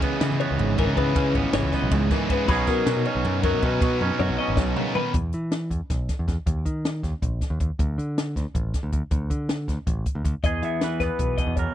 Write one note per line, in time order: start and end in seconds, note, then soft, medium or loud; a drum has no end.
0.00 0.21 C#3 medium
0.00 0.77 C#3 medium
0.00 0.20 C#3 medium
0.00 0.78 E3 loud
0.00 0.79 G#3 medium
0.00 0.41 B3 medium
0.00 0.78 C#4 loud
0.00 0.40 B4 medium
0.00 kick medium
0.00 ride medium
0.21 0.30 C#3 medium
0.21 0.77 E3 medium
0.21 snare loud
0.21 ride medium
0.32 0.40 C#3 medium
0.40 0.97 B3 medium
0.40 0.78 C#5 medium
0.40 ride medium
0.51 0.58 C#2 medium
0.59 0.86 G#1 loud
0.59 1.14 G#2 medium
0.59 ride loud
0.78 0.95 C#3 medium
0.78 1.52 E3 medium
0.78 0.97 E3 medium
0.78 0.98 G#3 medium
0.78 1.00 C#4 medium
0.78 0.97 A#4 medium
0.78 kick medium
0.78 ride medium
0.87 0.96 C#3 medium
0.96 1.15 C#3 medium
0.96 1.15 C#3 loud
0.96 1.15 E3 medium
0.96 1.17 G#3 medium
0.96 1.19 B3 medium
0.96 1.18 C#4 medium
0.96 1.35 B4 medium
0.96 kick medium
0.96 ride medium
1.15 1.34 C#3 loud
1.15 2.10 C#3 medium
1.15 1.54 C#3 medium
1.15 2.10 E3 loud
1.15 2.13 G#3 loud
1.15 2.14 C#4 loud
1.15 kick loud
1.15 ride loud
1.35 1.44 G#1 medium
1.35 1.74 B3 medium
1.35 kick medium
1.35 ride medium
1.53 1.62 G#1 medium
1.53 2.10 E3 medium
1.53 1.73 C#5 medium
1.53 snare loud
1.53 ride medium
1.63 1.72 C#2 loud
1.72 2.31 B3 medium
1.72 1.92 D#5 medium
1.72 kick medium
1.72 snare soft
1.72 ride medium
1.82 1.91 B1 medium
1.91 2.10 C#2 loud
1.91 2.47 G#2 medium
1.91 2.11 C#5 medium
1.91 kick loud
1.91 ride loud
2.11 2.29 C#3 medium
2.11 2.49 E3 medium
2.11 2.30 E3 medium
2.11 2.31 G#3 medium
2.11 2.29 C#4 medium
2.11 2.31 A#4 medium
2.11 kick medium
2.11 snare soft
2.11 ride medium
2.30 2.48 C#3 medium
2.30 2.49 E3 medium
2.30 2.51 G#3 medium
2.30 2.49 B3 medium
2.30 2.52 C#4 medium
2.30 2.47 B4 medium
2.30 kick medium
2.30 ride medium
2.48 2.66 B1 loud
2.48 3.24 B2 medium
2.48 3.43 B2 medium
2.48 2.86 F#3 medium
2.48 3.46 F#3 loud
2.48 3.44 B3 loud
2.48 2.67 C#4 medium
2.48 4.05 D#4 medium
2.48 3.43 D#4 loud
2.48 4.24 G#4 medium
2.48 2.68 B4 medium
2.48 kick loud
2.48 crash loud
2.67 2.86 B2 medium
2.67 3.06 C#4 medium
2.67 3.05 A#4 medium
2.67 kick medium
2.67 snare soft
2.67 ride medium
2.86 2.96 B2 medium
2.86 3.44 F#3 medium
2.86 snare loud
2.86 ride loud
2.96 3.05 B2 medium
3.05 3.63 C#4 medium
3.05 3.44 C#5 medium
3.05 ride medium
3.15 3.24 B1 medium
3.25 3.52 F#2 loud
3.25 3.80 F#2 medium
3.25 ride medium
3.43 4.20 F#3 medium
3.43 3.63 F#3 medium
3.43 3.64 B3 medium
3.43 3.65 D#4 medium
3.43 3.63 A#4 medium
3.43 kick medium
3.43 ride medium
3.47 3.61 B2 medium
3.53 3.62 B2 medium
3.62 3.80 B2 medium
3.62 3.81 B2 loud
3.62 3.82 F#3 medium
3.62 3.83 B3 medium
3.62 3.81 C#4 medium
3.62 3.84 D#4 medium
3.62 4.01 B4 medium
3.62 kick medium
3.62 ride medium
3.81 3.99 B2 loud
3.81 4.75 B2 medium
3.81 4.57 B2 medium
3.81 4.76 F#3 medium
3.81 4.76 B3 medium
3.81 4.77 D#4 loud
3.81 kick loud
3.81 ride medium
4.01 4.10 F#2 medium
4.01 4.39 C#4 medium
4.01 high tom medium
4.20 4.28 F#2 loud
4.20 5.13 F#3 medium
4.20 4.38 C#5 medium
4.20 high tom medium
4.29 4.38 B1 loud
4.38 5.13 C#4 medium
4.38 4.57 D#5 medium
4.48 4.56 G#1 medium
4.57 4.75 B1 loud
4.57 4.76 B2 medium
4.57 4.76 C#5 medium
4.57 kick loud
4.57 snare medium
4.76 4.95 B2 medium
4.76 4.95 C#3 medium
4.76 4.95 F#3 medium
4.76 4.96 B3 medium
4.76 4.95 D#4 medium
4.76 4.95 A#4 medium
4.76 floor tom loud
4.95 5.15 B2 medium
4.95 5.15 D#3 medium
4.95 5.15 F#3 medium
4.95 5.14 B3 medium
4.95 5.14 D#4 medium
4.95 5.14 B4 medium
4.95 floor tom medium
5.14 5.32 E2 medium
5.14 kick loud
5.14 closed hi-hat medium
5.33 5.69 E3 medium
5.33 closed hi-hat medium
5.52 snare medium
5.52 closed hi-hat medium
5.70 5.80 E2 medium
5.70 kick medium
5.70 closed hi-hat medium
5.90 6.08 B1 medium
5.90 kick loud
5.90 snare soft
5.90 closed hi-hat medium
6.09 kick medium
6.09 snare soft
6.09 closed hi-hat medium
6.19 6.27 E2 medium
6.28 6.37 E2 medium
6.28 kick medium
6.28 snare soft
6.28 closed hi-hat medium
6.46 6.65 D#2 medium
6.46 kick medium
6.46 closed hi-hat medium
6.66 7.02 D#3 medium
6.66 kick medium
6.66 closed hi-hat medium
6.85 snare loud
6.85 closed hi-hat medium
7.03 7.13 D#2 medium
7.03 kick medium
7.03 snare soft
7.03 closed hi-hat medium
7.22 7.40 A#1 medium
7.22 kick medium
7.22 closed hi-hat medium
7.41 kick medium
7.41 snare soft
7.41 closed hi-hat medium
7.50 7.60 D#2 medium
7.60 7.69 D#2 medium
7.60 kick medium
7.60 closed hi-hat medium
7.79 7.97 D2 medium
7.79 kick loud
7.79 closed hi-hat medium
7.98 8.34 D3 medium
7.98 closed hi-hat medium
8.18 snare loud
8.18 closed hi-hat medium
8.36 8.45 D2 medium
8.36 kick medium
8.36 snare soft
8.36 closed hi-hat medium
8.55 8.73 A1 medium
8.55 kick medium
8.55 closed hi-hat medium
8.74 kick medium
8.74 snare soft
8.74 closed hi-hat medium
8.83 8.92 D2 medium
8.92 9.02 D2 medium
8.92 kick medium
8.92 closed hi-hat medium
9.11 9.29 D2 medium
9.11 kick medium
9.11 closed hi-hat medium
9.30 9.66 D3 medium
9.30 kick medium
9.30 closed hi-hat medium
9.49 snare loud
9.49 closed hi-hat medium
9.68 9.77 D2 medium
9.68 kick medium
9.68 snare soft
9.68 closed hi-hat medium
9.87 10.05 A1 medium
9.87 kick loud
9.87 closed hi-hat medium
10.06 kick medium
10.06 closed hi-hat medium
10.15 10.24 D2 medium
10.24 10.34 D2 medium
10.24 kick medium
10.24 closed hi-hat medium
10.43 10.62 E2 medium
10.43 11.74 E2 medium
10.43 10.83 G#4 medium
10.43 10.62 D#5 medium
10.43 kick loud
10.43 closed hi-hat medium
10.62 10.98 E3 medium
10.62 11.02 B3 medium
10.62 11.01 E5 medium
10.62 closed hi-hat soft
10.81 11.74 E3 medium
10.81 11.59 B4 soft
10.81 snare loud
10.81 closed hi-hat medium
11.00 11.09 E2 medium
11.00 11.74 B3 medium
11.00 11.38 B4 medium
11.00 kick medium
11.00 snare soft
11.00 closed hi-hat medium
11.19 11.37 B1 medium
11.19 kick medium
11.19 closed hi-hat medium
11.38 11.74 B2 medium
11.38 11.56 D#5 medium
11.38 kick medium
11.38 closed hi-hat medium
11.47 11.56 E2 medium
11.56 11.66 E2 medium
11.56 11.74 A#4 soft
11.56 11.74 C#5 medium
11.56 kick medium
11.56 closed hi-hat medium